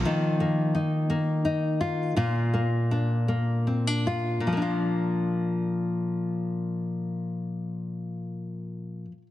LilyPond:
\new Staff \with { instrumentName = "Nylon-string guitar" } { \time 6/8 \key bes \major \tempo 4. = 49 <ees f'>8 bes8 ees'8 bes8 ees'8 f'8 | <bes, f'>8 bes8 d'8 bes8 c'16 d'16 f'8 | <bes, f bes d' f'>2.~ | <bes, f bes d' f'>2. | }